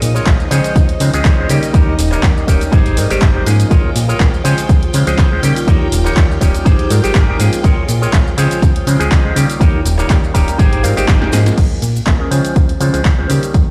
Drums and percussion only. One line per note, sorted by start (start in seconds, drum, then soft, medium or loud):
0.02 open hi-hat loud
0.02 cabasa medium
0.02 maracas medium
0.16 cabasa soft
0.16 maracas soft
0.26 kick loud
0.26 clap loud
0.26 closed hi-hat medium
0.26 cabasa soft
0.26 maracas medium
0.40 maracas soft
0.51 open hi-hat loud
0.51 cabasa medium
0.51 maracas loud
0.64 closed hi-hat medium
0.64 cabasa soft
0.64 maracas soft
0.76 kick loud
0.76 closed hi-hat medium
0.76 cabasa soft
0.76 maracas medium
0.89 closed hi-hat medium
1.00 open hi-hat loud
1.00 cabasa medium
1.00 maracas loud
1.14 closed hi-hat soft
1.14 cabasa soft
1.14 maracas soft
1.25 kick loud
1.25 clap loud
1.25 closed hi-hat medium
1.25 cabasa soft
1.25 maracas medium
1.49 open hi-hat loud
1.49 cabasa medium
1.49 maracas loud
1.63 closed hi-hat soft
1.63 cabasa soft
1.63 maracas soft
1.74 kick loud
1.74 closed hi-hat medium
1.74 cabasa soft
1.74 maracas medium
1.99 open hi-hat loud
1.99 cabasa medium
1.99 maracas loud
2.12 clap soft
2.12 cabasa soft
2.12 maracas soft
2.23 kick loud
2.23 clap loud
2.23 closed hi-hat medium
2.23 cabasa soft
2.23 maracas medium
2.37 maracas soft
2.48 kick medium
2.48 open hi-hat loud
2.48 cabasa medium
2.48 maracas loud
2.61 closed hi-hat medium
2.61 cabasa soft
2.61 maracas soft
2.73 kick loud
2.73 closed hi-hat medium
2.73 cabasa soft
2.73 maracas medium
2.86 closed hi-hat medium
2.86 maracas soft
2.97 open hi-hat loud
2.97 cabasa medium
2.97 maracas loud
3.10 open hi-hat medium
3.10 cabasa soft
3.10 maracas soft
3.21 kick loud
3.21 clap loud
3.21 closed hi-hat medium
3.21 cabasa soft
3.21 maracas medium
3.46 open hi-hat loud
3.46 cabasa medium
3.46 maracas medium
3.60 closed hi-hat soft
3.60 cabasa soft
3.60 maracas soft
3.71 kick loud
3.71 closed hi-hat medium
3.71 cabasa soft
3.71 maracas soft
3.96 open hi-hat loud
3.96 cabasa medium
3.96 maracas medium
4.09 cabasa soft
4.09 maracas soft
4.20 kick loud
4.20 clap loud
4.20 closed hi-hat medium
4.20 cabasa soft
4.20 maracas medium
4.34 maracas soft
4.45 open hi-hat loud
4.45 cabasa medium
4.45 maracas medium
4.58 closed hi-hat soft
4.58 cabasa soft
4.58 maracas soft
4.69 kick loud
4.69 closed hi-hat medium
4.69 cabasa soft
4.69 maracas medium
4.83 closed hi-hat soft
4.94 open hi-hat loud
4.94 cabasa medium
4.94 maracas medium
5.07 closed hi-hat medium
5.07 cabasa soft
5.07 maracas soft
5.18 kick loud
5.18 clap loud
5.18 closed hi-hat medium
5.18 cabasa soft
5.18 maracas soft
5.43 open hi-hat loud
5.43 cabasa medium
5.43 maracas loud
5.56 closed hi-hat soft
5.56 cabasa soft
5.56 maracas soft
5.68 kick loud
5.68 closed hi-hat medium
5.68 cabasa soft
5.68 maracas soft
5.92 open hi-hat loud
5.92 cabasa medium
5.92 maracas medium
6.05 clap soft
6.05 cabasa soft
6.05 maracas soft
6.17 kick loud
6.17 clap loud
6.17 closed hi-hat medium
6.17 cabasa soft
6.17 maracas medium
6.31 maracas soft
6.41 kick medium
6.41 open hi-hat loud
6.41 cabasa medium
6.41 maracas medium
6.54 closed hi-hat medium
6.54 cabasa soft
6.54 maracas soft
6.66 kick loud
6.66 closed hi-hat medium
6.66 cabasa soft
6.66 maracas medium
6.79 closed hi-hat medium
6.90 open hi-hat loud
6.90 cabasa medium
6.90 maracas medium
7.04 open hi-hat medium
7.04 cabasa soft
7.04 maracas soft
7.15 kick loud
7.15 clap loud
7.15 closed hi-hat medium
7.15 cabasa soft
7.15 maracas soft
7.40 open hi-hat loud
7.40 cabasa medium
7.40 maracas medium
7.53 closed hi-hat medium
7.53 cabasa soft
7.53 maracas soft
7.64 kick loud
7.64 closed hi-hat medium
7.64 cabasa soft
7.64 maracas medium
7.89 open hi-hat loud
7.89 cabasa medium
7.89 maracas medium
8.02 cabasa soft
8.02 maracas soft
8.13 kick loud
8.13 clap loud
8.13 closed hi-hat medium
8.13 cabasa soft
8.13 maracas medium
8.27 maracas soft
8.38 open hi-hat loud
8.38 cabasa medium
8.38 maracas medium
8.51 closed hi-hat medium
8.51 cabasa soft
8.51 maracas soft
8.62 kick loud
8.62 closed hi-hat medium
8.62 cabasa soft
8.62 maracas soft
8.76 closed hi-hat medium
8.87 open hi-hat loud
8.87 cabasa medium
8.87 maracas loud
9.01 closed hi-hat medium
9.01 cabasa soft
9.01 maracas soft
9.12 kick loud
9.12 clap loud
9.12 closed hi-hat medium
9.12 cabasa soft
9.12 maracas soft
9.36 open hi-hat loud
9.36 cabasa medium
9.36 maracas medium
9.50 closed hi-hat medium
9.50 cabasa soft
9.50 maracas soft
9.61 kick loud
9.61 closed hi-hat medium
9.61 cabasa soft
9.61 maracas medium
9.86 open hi-hat loud
9.86 cabasa medium
9.86 maracas medium
9.99 clap soft
9.99 cabasa soft
9.99 maracas soft
10.10 kick loud
10.10 clap loud
10.10 closed hi-hat medium
10.10 cabasa soft
10.10 maracas medium
10.24 maracas soft
10.35 kick medium
10.35 open hi-hat loud
10.35 cabasa medium
10.35 maracas loud
10.48 closed hi-hat medium
10.48 cabasa soft
10.48 maracas soft
10.59 kick loud
10.59 closed hi-hat medium
10.59 cabasa soft
10.59 maracas soft
10.73 closed hi-hat medium
10.73 maracas soft
10.84 open hi-hat loud
10.84 cabasa medium
10.84 maracas medium
10.97 open hi-hat medium
10.97 cabasa soft
10.97 maracas soft
11.08 kick loud
11.08 snare medium
11.08 clap loud
11.08 closed hi-hat medium
11.08 cabasa soft
11.08 maracas soft
11.22 snare medium
11.32 snare medium
11.32 open hi-hat loud
11.32 cabasa medium
11.32 maracas medium
11.46 snare medium
11.46 closed hi-hat medium
11.46 cabasa soft
11.46 maracas soft
11.58 kick loud
11.58 closed hi-hat medium
11.58 crash loud
11.58 cabasa soft
11.72 maracas soft
11.82 open hi-hat loud
11.82 cabasa medium
11.82 maracas medium
11.96 cabasa soft
11.96 maracas soft
12.07 kick loud
12.07 clap loud
12.07 closed hi-hat medium
12.07 cabasa soft
12.32 open hi-hat loud
12.32 cabasa medium
12.45 closed hi-hat medium
12.45 cabasa soft
12.56 kick loud
12.56 closed hi-hat medium
12.56 cabasa soft
12.69 closed hi-hat medium
12.69 maracas soft
12.80 open hi-hat loud
12.80 cabasa medium
12.80 maracas medium
12.94 closed hi-hat medium
12.94 cabasa soft
13.05 kick loud
13.05 clap loud
13.05 closed hi-hat medium
13.05 cabasa soft
13.30 open hi-hat loud
13.30 cabasa medium
13.43 closed hi-hat medium
13.43 cabasa soft
13.54 kick loud
13.54 closed hi-hat medium
13.54 cabasa soft